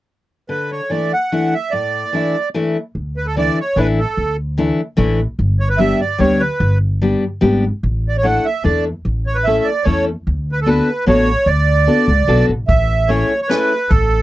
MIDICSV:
0, 0, Header, 1, 5, 480
1, 0, Start_track
1, 0, Key_signature, 2, "major"
1, 0, Tempo, 411805
1, 558, Time_signature, 3, 2, 24, 8
1, 4392, Tempo, 405405
1, 16770, End_track
2, 0, Start_track
2, 0, Title_t, "Accordion"
2, 0, Program_c, 0, 21
2, 575, Note_on_c, 0, 71, 55
2, 831, Note_off_c, 0, 71, 0
2, 836, Note_on_c, 0, 73, 51
2, 1050, Note_on_c, 0, 74, 50
2, 1060, Note_off_c, 0, 73, 0
2, 1309, Note_off_c, 0, 74, 0
2, 1318, Note_on_c, 0, 78, 64
2, 1793, Note_on_c, 0, 76, 65
2, 1799, Note_off_c, 0, 78, 0
2, 1992, Note_on_c, 0, 74, 66
2, 2014, Note_off_c, 0, 76, 0
2, 2904, Note_off_c, 0, 74, 0
2, 3692, Note_on_c, 0, 71, 72
2, 3808, Note_off_c, 0, 71, 0
2, 3808, Note_on_c, 0, 69, 58
2, 3911, Note_off_c, 0, 69, 0
2, 3932, Note_on_c, 0, 74, 85
2, 4183, Note_off_c, 0, 74, 0
2, 4198, Note_on_c, 0, 73, 65
2, 4403, Note_on_c, 0, 71, 80
2, 4413, Note_off_c, 0, 73, 0
2, 4515, Note_off_c, 0, 71, 0
2, 4658, Note_on_c, 0, 69, 64
2, 5100, Note_off_c, 0, 69, 0
2, 6559, Note_on_c, 0, 73, 74
2, 6664, Note_off_c, 0, 73, 0
2, 6671, Note_on_c, 0, 71, 69
2, 6771, Note_on_c, 0, 76, 84
2, 6788, Note_off_c, 0, 71, 0
2, 7039, Note_off_c, 0, 76, 0
2, 7043, Note_on_c, 0, 74, 61
2, 7268, Note_on_c, 0, 73, 77
2, 7272, Note_off_c, 0, 74, 0
2, 7509, Note_on_c, 0, 71, 56
2, 7527, Note_off_c, 0, 73, 0
2, 7963, Note_off_c, 0, 71, 0
2, 9504, Note_on_c, 0, 74, 67
2, 9600, Note_off_c, 0, 74, 0
2, 9609, Note_on_c, 0, 73, 59
2, 9687, Note_on_c, 0, 78, 79
2, 9710, Note_off_c, 0, 73, 0
2, 9935, Note_on_c, 0, 76, 67
2, 9953, Note_off_c, 0, 78, 0
2, 10152, Note_off_c, 0, 76, 0
2, 10164, Note_on_c, 0, 74, 68
2, 10405, Note_off_c, 0, 74, 0
2, 10902, Note_on_c, 0, 73, 67
2, 10995, Note_on_c, 0, 71, 68
2, 11023, Note_off_c, 0, 73, 0
2, 11111, Note_on_c, 0, 76, 75
2, 11127, Note_off_c, 0, 71, 0
2, 11345, Note_on_c, 0, 74, 70
2, 11387, Note_off_c, 0, 76, 0
2, 11578, Note_on_c, 0, 73, 81
2, 11600, Note_off_c, 0, 74, 0
2, 11830, Note_off_c, 0, 73, 0
2, 12388, Note_on_c, 0, 71, 71
2, 12481, Note_off_c, 0, 71, 0
2, 12498, Note_on_c, 0, 69, 68
2, 12579, Note_on_c, 0, 71, 65
2, 12591, Note_off_c, 0, 69, 0
2, 13014, Note_off_c, 0, 71, 0
2, 13051, Note_on_c, 0, 73, 98
2, 13507, Note_on_c, 0, 74, 86
2, 13536, Note_off_c, 0, 73, 0
2, 14681, Note_off_c, 0, 74, 0
2, 14938, Note_on_c, 0, 76, 76
2, 15423, Note_on_c, 0, 73, 69
2, 15447, Note_off_c, 0, 76, 0
2, 15802, Note_off_c, 0, 73, 0
2, 15820, Note_on_c, 0, 73, 61
2, 15901, Note_on_c, 0, 71, 80
2, 15911, Note_off_c, 0, 73, 0
2, 16377, Note_on_c, 0, 69, 71
2, 16402, Note_off_c, 0, 71, 0
2, 16770, Note_off_c, 0, 69, 0
2, 16770, End_track
3, 0, Start_track
3, 0, Title_t, "Steel-string acoustic guitar"
3, 0, Program_c, 1, 25
3, 570, Note_on_c, 1, 50, 46
3, 931, Note_off_c, 1, 50, 0
3, 1046, Note_on_c, 1, 52, 36
3, 1056, Note_on_c, 1, 62, 28
3, 1057, Note_on_c, 1, 57, 34
3, 1066, Note_on_c, 1, 64, 41
3, 1300, Note_off_c, 1, 52, 0
3, 1304, Note_off_c, 1, 62, 0
3, 1306, Note_off_c, 1, 57, 0
3, 1310, Note_off_c, 1, 64, 0
3, 1539, Note_on_c, 1, 52, 52
3, 1541, Note_on_c, 1, 62, 42
3, 1542, Note_on_c, 1, 57, 42
3, 1546, Note_on_c, 1, 64, 47
3, 1783, Note_off_c, 1, 62, 0
3, 1784, Note_off_c, 1, 52, 0
3, 1784, Note_off_c, 1, 57, 0
3, 1787, Note_off_c, 1, 64, 0
3, 2015, Note_on_c, 1, 45, 45
3, 2367, Note_off_c, 1, 45, 0
3, 2478, Note_on_c, 1, 52, 42
3, 2483, Note_on_c, 1, 57, 40
3, 2492, Note_on_c, 1, 62, 47
3, 2500, Note_on_c, 1, 64, 46
3, 2730, Note_off_c, 1, 52, 0
3, 2732, Note_off_c, 1, 57, 0
3, 2738, Note_off_c, 1, 62, 0
3, 2740, Note_off_c, 1, 64, 0
3, 2965, Note_on_c, 1, 52, 58
3, 2969, Note_on_c, 1, 57, 64
3, 2972, Note_on_c, 1, 62, 55
3, 2979, Note_on_c, 1, 64, 66
3, 3214, Note_off_c, 1, 52, 0
3, 3215, Note_off_c, 1, 57, 0
3, 3218, Note_off_c, 1, 62, 0
3, 3220, Note_off_c, 1, 64, 0
3, 3922, Note_on_c, 1, 52, 53
3, 3924, Note_on_c, 1, 57, 41
3, 3935, Note_on_c, 1, 62, 41
3, 3941, Note_on_c, 1, 64, 47
3, 4171, Note_off_c, 1, 57, 0
3, 4172, Note_off_c, 1, 52, 0
3, 4178, Note_off_c, 1, 62, 0
3, 4180, Note_off_c, 1, 64, 0
3, 4390, Note_on_c, 1, 52, 51
3, 4395, Note_on_c, 1, 57, 49
3, 4398, Note_on_c, 1, 62, 53
3, 4409, Note_on_c, 1, 64, 61
3, 4646, Note_off_c, 1, 52, 0
3, 4648, Note_off_c, 1, 57, 0
3, 4649, Note_off_c, 1, 62, 0
3, 4655, Note_off_c, 1, 64, 0
3, 5349, Note_on_c, 1, 52, 67
3, 5356, Note_on_c, 1, 57, 53
3, 5357, Note_on_c, 1, 62, 53
3, 5362, Note_on_c, 1, 64, 57
3, 5605, Note_off_c, 1, 52, 0
3, 5608, Note_off_c, 1, 62, 0
3, 5609, Note_off_c, 1, 57, 0
3, 5612, Note_off_c, 1, 64, 0
3, 5811, Note_on_c, 1, 52, 79
3, 5818, Note_on_c, 1, 62, 65
3, 5819, Note_on_c, 1, 57, 69
3, 5827, Note_on_c, 1, 64, 77
3, 6073, Note_off_c, 1, 52, 0
3, 6075, Note_off_c, 1, 62, 0
3, 6076, Note_off_c, 1, 57, 0
3, 6080, Note_off_c, 1, 64, 0
3, 6778, Note_on_c, 1, 55, 54
3, 6779, Note_on_c, 1, 59, 44
3, 6786, Note_on_c, 1, 62, 44
3, 6793, Note_on_c, 1, 67, 60
3, 7035, Note_off_c, 1, 59, 0
3, 7036, Note_off_c, 1, 55, 0
3, 7039, Note_off_c, 1, 62, 0
3, 7042, Note_off_c, 1, 67, 0
3, 7253, Note_on_c, 1, 55, 63
3, 7261, Note_on_c, 1, 59, 52
3, 7269, Note_on_c, 1, 62, 57
3, 7276, Note_on_c, 1, 67, 56
3, 7512, Note_off_c, 1, 55, 0
3, 7517, Note_off_c, 1, 59, 0
3, 7519, Note_off_c, 1, 62, 0
3, 7524, Note_off_c, 1, 67, 0
3, 8237, Note_on_c, 1, 55, 55
3, 8237, Note_on_c, 1, 59, 45
3, 8245, Note_on_c, 1, 62, 41
3, 8248, Note_on_c, 1, 67, 57
3, 8491, Note_off_c, 1, 59, 0
3, 8492, Note_off_c, 1, 55, 0
3, 8495, Note_off_c, 1, 67, 0
3, 8496, Note_off_c, 1, 62, 0
3, 8704, Note_on_c, 1, 55, 70
3, 8704, Note_on_c, 1, 59, 56
3, 8713, Note_on_c, 1, 62, 54
3, 8713, Note_on_c, 1, 67, 74
3, 8968, Note_off_c, 1, 55, 0
3, 8968, Note_off_c, 1, 59, 0
3, 8972, Note_off_c, 1, 67, 0
3, 8973, Note_off_c, 1, 62, 0
3, 9677, Note_on_c, 1, 57, 52
3, 9685, Note_on_c, 1, 62, 45
3, 9686, Note_on_c, 1, 64, 53
3, 9699, Note_on_c, 1, 69, 53
3, 9941, Note_off_c, 1, 57, 0
3, 9943, Note_off_c, 1, 62, 0
3, 9943, Note_off_c, 1, 64, 0
3, 9952, Note_off_c, 1, 69, 0
3, 10156, Note_on_c, 1, 57, 53
3, 10162, Note_on_c, 1, 62, 53
3, 10168, Note_on_c, 1, 64, 47
3, 10172, Note_on_c, 1, 69, 55
3, 10420, Note_off_c, 1, 57, 0
3, 10421, Note_off_c, 1, 62, 0
3, 10426, Note_off_c, 1, 64, 0
3, 10427, Note_off_c, 1, 69, 0
3, 11141, Note_on_c, 1, 57, 49
3, 11144, Note_on_c, 1, 61, 46
3, 11147, Note_on_c, 1, 64, 48
3, 11152, Note_on_c, 1, 69, 60
3, 11393, Note_off_c, 1, 61, 0
3, 11394, Note_off_c, 1, 57, 0
3, 11397, Note_off_c, 1, 64, 0
3, 11398, Note_off_c, 1, 69, 0
3, 11596, Note_on_c, 1, 57, 60
3, 11607, Note_on_c, 1, 61, 47
3, 11613, Note_on_c, 1, 64, 51
3, 11614, Note_on_c, 1, 69, 52
3, 11858, Note_off_c, 1, 57, 0
3, 11864, Note_off_c, 1, 61, 0
3, 11866, Note_off_c, 1, 64, 0
3, 11867, Note_off_c, 1, 69, 0
3, 12555, Note_on_c, 1, 59, 50
3, 12559, Note_on_c, 1, 62, 50
3, 12566, Note_on_c, 1, 66, 39
3, 12570, Note_on_c, 1, 69, 61
3, 12813, Note_off_c, 1, 59, 0
3, 12814, Note_off_c, 1, 62, 0
3, 12815, Note_off_c, 1, 66, 0
3, 12819, Note_off_c, 1, 69, 0
3, 13031, Note_on_c, 1, 59, 66
3, 13036, Note_on_c, 1, 62, 60
3, 13043, Note_on_c, 1, 66, 55
3, 13048, Note_on_c, 1, 69, 58
3, 13288, Note_off_c, 1, 59, 0
3, 13289, Note_off_c, 1, 62, 0
3, 13294, Note_off_c, 1, 66, 0
3, 13296, Note_off_c, 1, 69, 0
3, 13985, Note_on_c, 1, 59, 57
3, 13988, Note_on_c, 1, 62, 42
3, 13992, Note_on_c, 1, 69, 61
3, 13994, Note_on_c, 1, 66, 45
3, 14243, Note_off_c, 1, 62, 0
3, 14244, Note_off_c, 1, 59, 0
3, 14245, Note_off_c, 1, 69, 0
3, 14248, Note_off_c, 1, 66, 0
3, 14464, Note_on_c, 1, 59, 63
3, 14467, Note_on_c, 1, 62, 60
3, 14473, Note_on_c, 1, 66, 66
3, 14477, Note_on_c, 1, 69, 76
3, 14729, Note_off_c, 1, 59, 0
3, 14729, Note_off_c, 1, 62, 0
3, 14730, Note_off_c, 1, 66, 0
3, 14734, Note_off_c, 1, 69, 0
3, 15426, Note_on_c, 1, 57, 50
3, 15429, Note_on_c, 1, 61, 56
3, 15439, Note_on_c, 1, 64, 40
3, 15442, Note_on_c, 1, 68, 55
3, 15691, Note_off_c, 1, 57, 0
3, 15691, Note_off_c, 1, 61, 0
3, 15696, Note_off_c, 1, 64, 0
3, 15698, Note_off_c, 1, 68, 0
3, 15907, Note_on_c, 1, 57, 66
3, 15912, Note_on_c, 1, 61, 62
3, 15918, Note_on_c, 1, 64, 57
3, 15922, Note_on_c, 1, 68, 73
3, 16168, Note_off_c, 1, 57, 0
3, 16170, Note_off_c, 1, 61, 0
3, 16173, Note_off_c, 1, 64, 0
3, 16175, Note_off_c, 1, 68, 0
3, 16770, End_track
4, 0, Start_track
4, 0, Title_t, "Upright bass"
4, 0, Program_c, 2, 32
4, 3438, Note_on_c, 2, 38, 59
4, 4059, Note_off_c, 2, 38, 0
4, 4384, Note_on_c, 2, 33, 76
4, 4699, Note_off_c, 2, 33, 0
4, 4872, Note_on_c, 2, 38, 64
4, 5495, Note_off_c, 2, 38, 0
4, 5827, Note_on_c, 2, 33, 87
4, 6137, Note_off_c, 2, 33, 0
4, 6309, Note_on_c, 2, 31, 83
4, 6930, Note_off_c, 2, 31, 0
4, 7269, Note_on_c, 2, 38, 78
4, 7580, Note_off_c, 2, 38, 0
4, 7746, Note_on_c, 2, 31, 90
4, 8378, Note_off_c, 2, 31, 0
4, 8719, Note_on_c, 2, 32, 77
4, 9035, Note_off_c, 2, 32, 0
4, 9205, Note_on_c, 2, 33, 76
4, 9835, Note_off_c, 2, 33, 0
4, 10168, Note_on_c, 2, 40, 83
4, 10482, Note_off_c, 2, 40, 0
4, 10645, Note_on_c, 2, 33, 74
4, 11273, Note_off_c, 2, 33, 0
4, 11612, Note_on_c, 2, 40, 80
4, 11923, Note_off_c, 2, 40, 0
4, 12089, Note_on_c, 2, 38, 75
4, 12707, Note_off_c, 2, 38, 0
4, 13042, Note_on_c, 2, 33, 85
4, 13351, Note_off_c, 2, 33, 0
4, 13501, Note_on_c, 2, 38, 77
4, 13981, Note_off_c, 2, 38, 0
4, 14230, Note_on_c, 2, 37, 74
4, 14444, Note_off_c, 2, 37, 0
4, 14466, Note_on_c, 2, 35, 68
4, 14702, Note_off_c, 2, 35, 0
4, 14716, Note_on_c, 2, 33, 68
4, 14929, Note_off_c, 2, 33, 0
4, 14950, Note_on_c, 2, 33, 92
4, 15580, Note_off_c, 2, 33, 0
4, 16395, Note_on_c, 2, 33, 95
4, 16770, Note_off_c, 2, 33, 0
4, 16770, End_track
5, 0, Start_track
5, 0, Title_t, "Drums"
5, 14952, Note_on_c, 9, 36, 72
5, 14953, Note_on_c, 9, 42, 36
5, 15070, Note_off_c, 9, 36, 0
5, 15071, Note_off_c, 9, 42, 0
5, 15441, Note_on_c, 9, 42, 50
5, 15559, Note_off_c, 9, 42, 0
5, 15922, Note_on_c, 9, 38, 56
5, 15922, Note_on_c, 9, 42, 39
5, 16041, Note_off_c, 9, 38, 0
5, 16041, Note_off_c, 9, 42, 0
5, 16393, Note_on_c, 9, 42, 43
5, 16398, Note_on_c, 9, 36, 68
5, 16511, Note_off_c, 9, 42, 0
5, 16516, Note_off_c, 9, 36, 0
5, 16770, End_track
0, 0, End_of_file